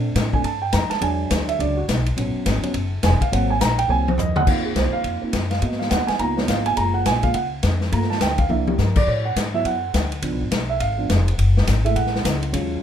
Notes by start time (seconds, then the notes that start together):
Already playing: A#2 A3 C4 D4 A4
0.15 A2, kick, snare, hi-hat pedal, ride
0.33 A3 C4 D4 G#5, kick
0.44 G2 A5, kick, ride
0.62 G5
0.72 F2 A#5, kick, snare, hi-hat pedal, ride
0.90 A5, muted upright bass stroke, snare, ride
1.01 E2 F#3 G#3 D4 G#5, kick, ride
1.30 D2, kick, snare, hi-hat pedal, ride
1.49 E5, ride
1.59 C#2 F#3 G#3 D4 D5, kick, ride
1.77 F#4
1.88 B1, kick, snare, hi-hat pedal, ride
2.06 ride
2.17 A1 F#3 B3 C#4, kick, ride
2.35 muted upright bass stroke
2.46 G#1, kick, snare, hi-hat pedal, ride
2.63 F#3 B3 C#4, muted upright bass stroke, ride
2.74 F#1, kick, ride
3.03 E1 G#5, kick, snare, hi-hat pedal, ride
3.21 F5, kick, ride
3.32 G#1 F#3 A#3 C4 F#5, kick, ride
3.50 G#5
3.61 A#1 A#5, kick, snare, hi-hat pedal, ride
3.78 G5, ride
3.88 C2 F#3 A#3 C4 G#5
4.08 C5, high tom
4.18 D#2 D#5, floor tom, hi-hat pedal
4.36 F#5, mid tom
4.46 C#2 A#3 C4 D#4 F4 F5, kick, crash
4.65 G#4
4.75 C2 C5, kick, snare, hi-hat pedal, ride
4.93 F5, muted upright bass stroke
5.04 F2, kick, ride
5.21 A#3 C4 D#4 F4, muted upright bass stroke
5.33 F#2, kick, snare, hi-hat pedal, ride
5.51 F5, snare, ride
5.61 G#2 A#3 B3 F#4 D#5, kick, ride
5.71 snare
5.79 F5, snare
5.90 D#2 F#5, kick, snare, hi-hat pedal, ride
6.07 G#5, muted upright bass stroke, snare, ride
6.18 C#2 A#3 B3 D#4 F4 A#5, kick, ride
6.37 C#5, snare
6.48 G#1 F5, kick, snare, hi-hat pedal, ride
6.66 G#5, ride
6.76 F#1 G#3 A#3 F4 A#5, kick, ride
6.94 F#5
7.06 A#1 G#5, kick, snare, hi-hat pedal, ride
7.23 G#3 A#3 F4 F5, kick, ride
7.34 C#2 F#5, kick, ride
7.63 F2, kick, snare, hi-hat pedal, ride
7.81 snare
7.92 G2 A3 A#3 F4 A#5, kick, ride
8.02 snare
8.10 A5, snare
8.21 D2 G5, kick, snare, hi-hat pedal, ride
8.38 F5, kick, ride
8.49 C2 A#3 D4 E4 E5, high tom
8.67 G4, high tom
8.78 G2 A#4, snare, hi-hat pedal
8.96 D5, kick, crash
9.07 A2 C#5, kick
9.25 F#5
9.36 G#2, kick, snare, hi-hat pedal, ride
9.54 F#3 B3 E4 E5
9.65 F#2 F#5, kick, ride
9.94 D2, kick, snare, hi-hat pedal, ride
10.12 ride
10.22 C#2 F3 B3 D4, kick, ride
10.31 B1
10.41 G#1
10.51 B1, kick, snare, hi-hat pedal, ride
10.69 E5
10.80 G#1 F5, kick, ride
10.98 F3 B3 D4
11.09 F1, kick, snare, hi-hat pedal, ride
11.28 ride
11.38 F#1, kick, ride
11.57 snare
11.67 G#1, kick, snare, hi-hat pedal, ride
11.84 G#3 A3 E4 E5, ride
11.96 A1 F#5, kick, ride
12.06 snare
12.15 snare
12.25 C#2, kick, snare, hi-hat pedal, ride
12.43 ride
12.52 D#2 F#3 G#3 C#4 F4, kick, ride